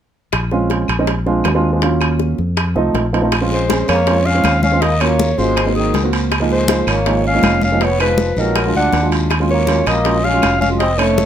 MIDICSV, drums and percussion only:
0, 0, Header, 1, 2, 480
1, 0, Start_track
1, 0, Key_signature, -5, "minor"
1, 0, Tempo, 374065
1, 429, Time_signature, 4, 2, 24, 8
1, 14442, End_track
2, 0, Start_track
2, 0, Title_t, "Drums"
2, 415, Note_on_c, 9, 75, 61
2, 419, Note_on_c, 9, 60, 66
2, 425, Note_on_c, 9, 65, 84
2, 543, Note_off_c, 9, 75, 0
2, 548, Note_off_c, 9, 60, 0
2, 553, Note_off_c, 9, 65, 0
2, 659, Note_on_c, 9, 60, 30
2, 787, Note_off_c, 9, 60, 0
2, 897, Note_on_c, 9, 60, 46
2, 910, Note_on_c, 9, 65, 61
2, 1026, Note_off_c, 9, 60, 0
2, 1038, Note_off_c, 9, 65, 0
2, 1132, Note_on_c, 9, 75, 58
2, 1141, Note_on_c, 9, 60, 30
2, 1147, Note_on_c, 9, 65, 84
2, 1260, Note_off_c, 9, 75, 0
2, 1269, Note_off_c, 9, 60, 0
2, 1276, Note_off_c, 9, 65, 0
2, 1378, Note_on_c, 9, 60, 61
2, 1383, Note_on_c, 9, 65, 62
2, 1506, Note_off_c, 9, 60, 0
2, 1511, Note_off_c, 9, 65, 0
2, 1624, Note_on_c, 9, 60, 30
2, 1752, Note_off_c, 9, 60, 0
2, 1848, Note_on_c, 9, 75, 56
2, 1859, Note_on_c, 9, 65, 80
2, 1859, Note_on_c, 9, 66, 61
2, 1861, Note_on_c, 9, 60, 30
2, 1861, Note_on_c, 9, 61, 73
2, 1977, Note_off_c, 9, 75, 0
2, 1987, Note_off_c, 9, 65, 0
2, 1987, Note_off_c, 9, 66, 0
2, 1989, Note_off_c, 9, 60, 0
2, 1989, Note_off_c, 9, 61, 0
2, 2335, Note_on_c, 9, 60, 63
2, 2346, Note_on_c, 9, 65, 61
2, 2463, Note_off_c, 9, 60, 0
2, 2475, Note_off_c, 9, 65, 0
2, 2573, Note_on_c, 9, 60, 29
2, 2575, Note_on_c, 9, 75, 67
2, 2585, Note_on_c, 9, 65, 81
2, 2702, Note_off_c, 9, 60, 0
2, 2704, Note_off_c, 9, 75, 0
2, 2713, Note_off_c, 9, 65, 0
2, 2816, Note_on_c, 9, 60, 53
2, 2945, Note_off_c, 9, 60, 0
2, 3059, Note_on_c, 9, 60, 30
2, 3187, Note_off_c, 9, 60, 0
2, 3295, Note_on_c, 9, 75, 55
2, 3299, Note_on_c, 9, 60, 66
2, 3304, Note_on_c, 9, 65, 79
2, 3423, Note_off_c, 9, 75, 0
2, 3428, Note_off_c, 9, 60, 0
2, 3432, Note_off_c, 9, 65, 0
2, 3537, Note_on_c, 9, 60, 32
2, 3665, Note_off_c, 9, 60, 0
2, 3781, Note_on_c, 9, 60, 32
2, 3781, Note_on_c, 9, 61, 80
2, 3787, Note_on_c, 9, 65, 58
2, 3909, Note_off_c, 9, 60, 0
2, 3909, Note_off_c, 9, 61, 0
2, 3915, Note_off_c, 9, 65, 0
2, 4032, Note_on_c, 9, 65, 61
2, 4160, Note_off_c, 9, 65, 0
2, 4258, Note_on_c, 9, 75, 60
2, 4261, Note_on_c, 9, 60, 65
2, 4263, Note_on_c, 9, 65, 81
2, 4264, Note_on_c, 9, 63, 30
2, 4268, Note_on_c, 9, 74, 64
2, 4387, Note_off_c, 9, 75, 0
2, 4389, Note_off_c, 9, 60, 0
2, 4392, Note_off_c, 9, 65, 0
2, 4393, Note_off_c, 9, 63, 0
2, 4397, Note_off_c, 9, 74, 0
2, 4504, Note_on_c, 9, 60, 31
2, 4509, Note_on_c, 9, 63, 30
2, 4632, Note_off_c, 9, 60, 0
2, 4637, Note_off_c, 9, 63, 0
2, 4742, Note_on_c, 9, 60, 51
2, 4746, Note_on_c, 9, 63, 79
2, 4746, Note_on_c, 9, 73, 62
2, 4752, Note_on_c, 9, 65, 65
2, 4870, Note_off_c, 9, 60, 0
2, 4874, Note_off_c, 9, 63, 0
2, 4875, Note_off_c, 9, 73, 0
2, 4880, Note_off_c, 9, 65, 0
2, 4979, Note_on_c, 9, 73, 65
2, 4981, Note_on_c, 9, 63, 30
2, 4983, Note_on_c, 9, 60, 32
2, 4990, Note_on_c, 9, 75, 57
2, 4992, Note_on_c, 9, 65, 86
2, 5108, Note_off_c, 9, 73, 0
2, 5110, Note_off_c, 9, 63, 0
2, 5111, Note_off_c, 9, 60, 0
2, 5118, Note_off_c, 9, 75, 0
2, 5120, Note_off_c, 9, 65, 0
2, 5219, Note_on_c, 9, 63, 29
2, 5222, Note_on_c, 9, 60, 64
2, 5227, Note_on_c, 9, 74, 60
2, 5228, Note_on_c, 9, 65, 61
2, 5347, Note_off_c, 9, 63, 0
2, 5350, Note_off_c, 9, 60, 0
2, 5355, Note_off_c, 9, 74, 0
2, 5356, Note_off_c, 9, 65, 0
2, 5460, Note_on_c, 9, 63, 34
2, 5463, Note_on_c, 9, 60, 33
2, 5588, Note_off_c, 9, 63, 0
2, 5591, Note_off_c, 9, 60, 0
2, 5693, Note_on_c, 9, 63, 82
2, 5701, Note_on_c, 9, 75, 66
2, 5706, Note_on_c, 9, 73, 61
2, 5707, Note_on_c, 9, 65, 79
2, 5709, Note_on_c, 9, 60, 31
2, 5709, Note_on_c, 9, 61, 80
2, 5821, Note_off_c, 9, 63, 0
2, 5830, Note_off_c, 9, 75, 0
2, 5834, Note_off_c, 9, 73, 0
2, 5835, Note_off_c, 9, 65, 0
2, 5837, Note_off_c, 9, 60, 0
2, 5837, Note_off_c, 9, 61, 0
2, 5938, Note_on_c, 9, 63, 75
2, 5944, Note_on_c, 9, 73, 63
2, 6066, Note_off_c, 9, 63, 0
2, 6072, Note_off_c, 9, 73, 0
2, 6184, Note_on_c, 9, 60, 66
2, 6185, Note_on_c, 9, 63, 30
2, 6188, Note_on_c, 9, 74, 62
2, 6191, Note_on_c, 9, 65, 69
2, 6312, Note_off_c, 9, 60, 0
2, 6313, Note_off_c, 9, 63, 0
2, 6317, Note_off_c, 9, 74, 0
2, 6320, Note_off_c, 9, 65, 0
2, 6421, Note_on_c, 9, 75, 63
2, 6426, Note_on_c, 9, 60, 30
2, 6427, Note_on_c, 9, 63, 31
2, 6429, Note_on_c, 9, 65, 78
2, 6549, Note_off_c, 9, 75, 0
2, 6554, Note_off_c, 9, 60, 0
2, 6555, Note_off_c, 9, 63, 0
2, 6558, Note_off_c, 9, 65, 0
2, 6665, Note_on_c, 9, 60, 52
2, 6665, Note_on_c, 9, 63, 89
2, 6671, Note_on_c, 9, 73, 67
2, 6793, Note_off_c, 9, 60, 0
2, 6794, Note_off_c, 9, 63, 0
2, 6799, Note_off_c, 9, 73, 0
2, 6900, Note_on_c, 9, 63, 32
2, 6909, Note_on_c, 9, 60, 30
2, 6913, Note_on_c, 9, 73, 64
2, 7028, Note_off_c, 9, 63, 0
2, 7038, Note_off_c, 9, 60, 0
2, 7041, Note_off_c, 9, 73, 0
2, 7140, Note_on_c, 9, 75, 56
2, 7142, Note_on_c, 9, 63, 30
2, 7147, Note_on_c, 9, 65, 84
2, 7150, Note_on_c, 9, 74, 63
2, 7155, Note_on_c, 9, 60, 67
2, 7269, Note_off_c, 9, 75, 0
2, 7270, Note_off_c, 9, 63, 0
2, 7275, Note_off_c, 9, 65, 0
2, 7279, Note_off_c, 9, 74, 0
2, 7283, Note_off_c, 9, 60, 0
2, 7384, Note_on_c, 9, 60, 35
2, 7384, Note_on_c, 9, 63, 31
2, 7512, Note_off_c, 9, 60, 0
2, 7513, Note_off_c, 9, 63, 0
2, 7622, Note_on_c, 9, 63, 77
2, 7629, Note_on_c, 9, 73, 61
2, 7631, Note_on_c, 9, 60, 34
2, 7631, Note_on_c, 9, 61, 73
2, 7631, Note_on_c, 9, 65, 59
2, 7750, Note_off_c, 9, 63, 0
2, 7758, Note_off_c, 9, 73, 0
2, 7759, Note_off_c, 9, 60, 0
2, 7759, Note_off_c, 9, 61, 0
2, 7759, Note_off_c, 9, 65, 0
2, 7864, Note_on_c, 9, 73, 68
2, 7866, Note_on_c, 9, 63, 32
2, 7868, Note_on_c, 9, 65, 65
2, 7993, Note_off_c, 9, 73, 0
2, 7994, Note_off_c, 9, 63, 0
2, 7996, Note_off_c, 9, 65, 0
2, 8103, Note_on_c, 9, 75, 62
2, 8105, Note_on_c, 9, 60, 62
2, 8107, Note_on_c, 9, 74, 63
2, 8108, Note_on_c, 9, 63, 32
2, 8109, Note_on_c, 9, 65, 84
2, 8231, Note_off_c, 9, 75, 0
2, 8233, Note_off_c, 9, 60, 0
2, 8235, Note_off_c, 9, 74, 0
2, 8236, Note_off_c, 9, 63, 0
2, 8237, Note_off_c, 9, 65, 0
2, 8342, Note_on_c, 9, 63, 32
2, 8348, Note_on_c, 9, 60, 31
2, 8471, Note_off_c, 9, 63, 0
2, 8476, Note_off_c, 9, 60, 0
2, 8573, Note_on_c, 9, 63, 89
2, 8582, Note_on_c, 9, 73, 63
2, 8584, Note_on_c, 9, 60, 53
2, 8587, Note_on_c, 9, 65, 69
2, 8702, Note_off_c, 9, 63, 0
2, 8710, Note_off_c, 9, 73, 0
2, 8713, Note_off_c, 9, 60, 0
2, 8716, Note_off_c, 9, 65, 0
2, 8816, Note_on_c, 9, 75, 64
2, 8818, Note_on_c, 9, 63, 34
2, 8821, Note_on_c, 9, 73, 65
2, 8826, Note_on_c, 9, 60, 30
2, 8827, Note_on_c, 9, 65, 90
2, 8944, Note_off_c, 9, 75, 0
2, 8947, Note_off_c, 9, 63, 0
2, 8950, Note_off_c, 9, 73, 0
2, 8955, Note_off_c, 9, 60, 0
2, 8955, Note_off_c, 9, 65, 0
2, 9057, Note_on_c, 9, 63, 30
2, 9062, Note_on_c, 9, 60, 62
2, 9064, Note_on_c, 9, 74, 64
2, 9068, Note_on_c, 9, 65, 61
2, 9185, Note_off_c, 9, 63, 0
2, 9191, Note_off_c, 9, 60, 0
2, 9193, Note_off_c, 9, 74, 0
2, 9196, Note_off_c, 9, 65, 0
2, 9293, Note_on_c, 9, 63, 32
2, 9299, Note_on_c, 9, 60, 35
2, 9422, Note_off_c, 9, 63, 0
2, 9427, Note_off_c, 9, 60, 0
2, 9530, Note_on_c, 9, 63, 81
2, 9539, Note_on_c, 9, 60, 29
2, 9539, Note_on_c, 9, 61, 74
2, 9542, Note_on_c, 9, 65, 83
2, 9544, Note_on_c, 9, 73, 62
2, 9549, Note_on_c, 9, 75, 60
2, 9659, Note_off_c, 9, 63, 0
2, 9667, Note_off_c, 9, 60, 0
2, 9667, Note_off_c, 9, 61, 0
2, 9670, Note_off_c, 9, 65, 0
2, 9672, Note_off_c, 9, 73, 0
2, 9678, Note_off_c, 9, 75, 0
2, 9771, Note_on_c, 9, 63, 77
2, 9785, Note_on_c, 9, 73, 66
2, 9899, Note_off_c, 9, 63, 0
2, 9913, Note_off_c, 9, 73, 0
2, 10015, Note_on_c, 9, 63, 30
2, 10020, Note_on_c, 9, 60, 65
2, 10021, Note_on_c, 9, 74, 68
2, 10029, Note_on_c, 9, 65, 62
2, 10144, Note_off_c, 9, 63, 0
2, 10149, Note_off_c, 9, 60, 0
2, 10149, Note_off_c, 9, 74, 0
2, 10157, Note_off_c, 9, 65, 0
2, 10252, Note_on_c, 9, 60, 31
2, 10255, Note_on_c, 9, 63, 30
2, 10262, Note_on_c, 9, 75, 63
2, 10270, Note_on_c, 9, 65, 82
2, 10380, Note_off_c, 9, 60, 0
2, 10384, Note_off_c, 9, 63, 0
2, 10390, Note_off_c, 9, 75, 0
2, 10399, Note_off_c, 9, 65, 0
2, 10492, Note_on_c, 9, 63, 90
2, 10493, Note_on_c, 9, 60, 56
2, 10503, Note_on_c, 9, 73, 61
2, 10621, Note_off_c, 9, 63, 0
2, 10622, Note_off_c, 9, 60, 0
2, 10631, Note_off_c, 9, 73, 0
2, 10733, Note_on_c, 9, 63, 33
2, 10734, Note_on_c, 9, 60, 33
2, 10741, Note_on_c, 9, 73, 63
2, 10861, Note_off_c, 9, 63, 0
2, 10862, Note_off_c, 9, 60, 0
2, 10870, Note_off_c, 9, 73, 0
2, 10977, Note_on_c, 9, 75, 59
2, 10978, Note_on_c, 9, 60, 65
2, 10980, Note_on_c, 9, 63, 30
2, 10980, Note_on_c, 9, 65, 80
2, 10985, Note_on_c, 9, 74, 64
2, 11105, Note_off_c, 9, 75, 0
2, 11107, Note_off_c, 9, 60, 0
2, 11108, Note_off_c, 9, 65, 0
2, 11109, Note_off_c, 9, 63, 0
2, 11114, Note_off_c, 9, 74, 0
2, 11219, Note_on_c, 9, 63, 32
2, 11223, Note_on_c, 9, 60, 35
2, 11347, Note_off_c, 9, 63, 0
2, 11351, Note_off_c, 9, 60, 0
2, 11452, Note_on_c, 9, 63, 74
2, 11462, Note_on_c, 9, 60, 31
2, 11462, Note_on_c, 9, 61, 79
2, 11464, Note_on_c, 9, 73, 60
2, 11465, Note_on_c, 9, 65, 61
2, 11580, Note_off_c, 9, 63, 0
2, 11590, Note_off_c, 9, 60, 0
2, 11590, Note_off_c, 9, 61, 0
2, 11592, Note_off_c, 9, 73, 0
2, 11594, Note_off_c, 9, 65, 0
2, 11696, Note_on_c, 9, 63, 31
2, 11701, Note_on_c, 9, 73, 68
2, 11706, Note_on_c, 9, 65, 63
2, 11824, Note_off_c, 9, 63, 0
2, 11829, Note_off_c, 9, 73, 0
2, 11834, Note_off_c, 9, 65, 0
2, 11932, Note_on_c, 9, 63, 32
2, 11937, Note_on_c, 9, 74, 65
2, 11937, Note_on_c, 9, 75, 61
2, 11942, Note_on_c, 9, 60, 63
2, 11950, Note_on_c, 9, 65, 85
2, 12061, Note_off_c, 9, 63, 0
2, 12065, Note_off_c, 9, 75, 0
2, 12066, Note_off_c, 9, 74, 0
2, 12070, Note_off_c, 9, 60, 0
2, 12078, Note_off_c, 9, 65, 0
2, 12176, Note_on_c, 9, 63, 31
2, 12183, Note_on_c, 9, 60, 30
2, 12304, Note_off_c, 9, 63, 0
2, 12312, Note_off_c, 9, 60, 0
2, 12409, Note_on_c, 9, 63, 77
2, 12415, Note_on_c, 9, 60, 54
2, 12415, Note_on_c, 9, 73, 67
2, 12429, Note_on_c, 9, 65, 64
2, 12538, Note_off_c, 9, 63, 0
2, 12543, Note_off_c, 9, 73, 0
2, 12544, Note_off_c, 9, 60, 0
2, 12557, Note_off_c, 9, 65, 0
2, 12655, Note_on_c, 9, 63, 31
2, 12658, Note_on_c, 9, 73, 67
2, 12659, Note_on_c, 9, 60, 32
2, 12660, Note_on_c, 9, 75, 60
2, 12667, Note_on_c, 9, 65, 92
2, 12783, Note_off_c, 9, 63, 0
2, 12787, Note_off_c, 9, 60, 0
2, 12787, Note_off_c, 9, 73, 0
2, 12788, Note_off_c, 9, 75, 0
2, 12795, Note_off_c, 9, 65, 0
2, 12896, Note_on_c, 9, 60, 65
2, 12900, Note_on_c, 9, 63, 30
2, 12902, Note_on_c, 9, 74, 65
2, 12911, Note_on_c, 9, 65, 65
2, 13024, Note_off_c, 9, 60, 0
2, 13028, Note_off_c, 9, 63, 0
2, 13030, Note_off_c, 9, 74, 0
2, 13039, Note_off_c, 9, 65, 0
2, 13143, Note_on_c, 9, 60, 33
2, 13146, Note_on_c, 9, 63, 33
2, 13271, Note_off_c, 9, 60, 0
2, 13275, Note_off_c, 9, 63, 0
2, 13372, Note_on_c, 9, 75, 62
2, 13380, Note_on_c, 9, 73, 62
2, 13382, Note_on_c, 9, 60, 32
2, 13382, Note_on_c, 9, 61, 77
2, 13384, Note_on_c, 9, 63, 79
2, 13385, Note_on_c, 9, 65, 84
2, 13501, Note_off_c, 9, 75, 0
2, 13508, Note_off_c, 9, 73, 0
2, 13511, Note_off_c, 9, 60, 0
2, 13511, Note_off_c, 9, 61, 0
2, 13512, Note_off_c, 9, 63, 0
2, 13513, Note_off_c, 9, 65, 0
2, 13619, Note_on_c, 9, 73, 65
2, 13629, Note_on_c, 9, 63, 75
2, 13747, Note_off_c, 9, 73, 0
2, 13757, Note_off_c, 9, 63, 0
2, 13861, Note_on_c, 9, 74, 66
2, 13862, Note_on_c, 9, 60, 62
2, 13866, Note_on_c, 9, 63, 32
2, 13866, Note_on_c, 9, 65, 64
2, 13990, Note_off_c, 9, 60, 0
2, 13990, Note_off_c, 9, 74, 0
2, 13994, Note_off_c, 9, 65, 0
2, 13995, Note_off_c, 9, 63, 0
2, 14095, Note_on_c, 9, 75, 64
2, 14104, Note_on_c, 9, 65, 82
2, 14105, Note_on_c, 9, 63, 32
2, 14109, Note_on_c, 9, 60, 32
2, 14223, Note_off_c, 9, 75, 0
2, 14233, Note_off_c, 9, 65, 0
2, 14234, Note_off_c, 9, 63, 0
2, 14237, Note_off_c, 9, 60, 0
2, 14341, Note_on_c, 9, 73, 64
2, 14344, Note_on_c, 9, 60, 51
2, 14347, Note_on_c, 9, 63, 87
2, 14442, Note_off_c, 9, 60, 0
2, 14442, Note_off_c, 9, 63, 0
2, 14442, Note_off_c, 9, 73, 0
2, 14442, End_track
0, 0, End_of_file